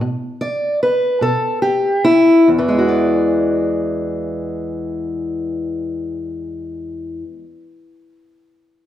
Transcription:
0.01 0.73 B2 medium
0.41 0.81 D5 loud
0.83 1.23 B4 medium
1.21 1.97 B2 medium
1.21 1.62 A4 loud
1.62 2.05 G4 medium
2.04 2.48 E4 loud
2.48 7.23 E2 medium
2.58 7.33 E3 medium
2.68 7.43 G#3 medium
2.78 7.53 F#4 medium
2.88 7.63 D5 medium

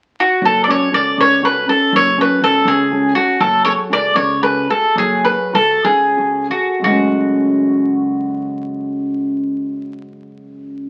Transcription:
0.20 0.44 F#4 medium
0.42 0.75 F#1 medium
0.42 0.91 F#3 medium
0.42 0.63 A4 medium
0.64 0.90 C#4 soft
0.64 0.69 D5 medium
0.68 0.91 F#4 soft
0.68 0.91 A4 soft
0.68 0.93 C#5 medium
0.91 1.09 C#2 medium
0.91 1.32 C#4 soft
0.91 1.33 F#4 soft
0.91 1.33 A4 soft
0.91 1.17 D5 medium
1.17 1.67 C#2 medium
1.17 1.66 C#3 soft
1.17 1.45 C#5 medium
1.42 1.66 C#4 soft
1.42 1.67 F#4 soft
1.42 1.67 A4 soft
1.42 1.67 B4 medium
1.68 2.08 C#4 soft
1.68 2.08 F#4 soft
1.68 2.08 A4 soft
1.68 1.94 A4 medium
1.93 2.25 F#1 medium
1.93 2.41 F#3 medium
1.93 2.20 C#5 medium
2.17 2.41 C#4 soft
2.17 2.41 F#4 soft
2.17 2.41 A4 soft
2.17 2.43 B4 medium
2.41 2.58 C#2 medium
2.41 2.82 C#4 soft
2.41 2.82 F#4 soft
2.41 2.82 A4 soft
2.41 2.68 A4 medium
2.65 3.14 C#2 medium
2.65 3.15 C#3 medium
2.65 3.15 G#4 medium
2.91 3.14 C#4 soft
2.91 3.14 F#4 soft
2.91 3.15 A4 soft
3.15 3.35 C#4 soft
3.15 3.39 F#4 medium
3.15 3.35 F#4 soft
3.15 3.36 A4 soft
3.40 3.73 F#1 medium
3.40 3.90 F#3 medium
3.40 3.64 A4 medium
3.65 3.88 F#4 soft
3.65 3.88 G#4 soft
3.65 3.89 A4 soft
3.65 3.72 C#5 medium
3.90 4.08 C#2 medium
3.90 4.31 F#4 soft
3.90 4.31 G#4 soft
3.90 4.32 A4 soft
3.90 4.15 D5 medium
4.15 4.68 C#2 medium
4.15 4.66 C#3 medium
4.15 4.40 C#5 medium
4.42 4.68 F#4 soft
4.42 4.69 G#4 soft
4.42 4.69 A4 soft
4.42 4.67 B4 medium
4.70 5.14 F#4 soft
4.70 5.15 G#4 soft
4.70 4.95 A4 medium
4.70 5.15 A4 soft
4.95 5.33 F#1 medium
4.95 5.53 F#3 medium
4.95 5.24 G#4 medium
5.24 5.52 F#4 soft
5.24 5.52 G#4 soft
5.24 5.53 A4 soft
5.24 5.52 B4 medium
5.53 5.74 C#2 medium
5.53 6.04 F#4 soft
5.53 6.04 G#4 soft
5.53 6.05 A4 soft
5.53 5.83 A4 medium
5.84 6.49 C#2 medium
5.84 6.48 C#3 soft
5.84 6.46 G#4 medium
6.17 6.48 F#4 soft
6.17 6.49 G#4 soft
6.17 6.50 A4 soft
6.50 6.77 F#4 soft
6.50 6.83 F#4 soft
6.50 6.78 G#4 soft
6.50 6.78 A4 soft
6.79 10.89 F#2 soft
6.79 10.89 C#3 soft
6.84 10.89 F#1 medium
6.84 10.89 G#3 soft
6.84 10.89 F#4 medium
6.88 10.89 A3 soft
6.88 10.89 C#4 soft

